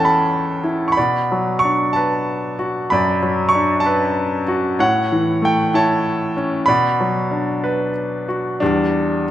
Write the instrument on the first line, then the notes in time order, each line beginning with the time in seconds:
grand piano
Already playing: E2 E3 C#4 E4 C#5 E5 G5 A5
0.00 A4
0.05 A5 B5
0.64 E4
0.88 C#6
0.92 B5
0.97 B2 D5
1.32 F#3
1.59 C#6
1.64 D4
1.93 B4 A5
2.59 F#4
2.90 F#2 D5 B5
3.23 F#3
3.49 C#6
3.55 D4
3.80 A5
3.86 B4
4.48 F#4
4.79 A2 C#5 F#5
5.12 E3
5.42 A3 G5
5.74 E4 C#5 A5
6.37 C#4
6.66 B2 D5 B5
7.00 F#3
7.31 D4
7.64 B4
8.28 F#4
8.60 E2 G3 D4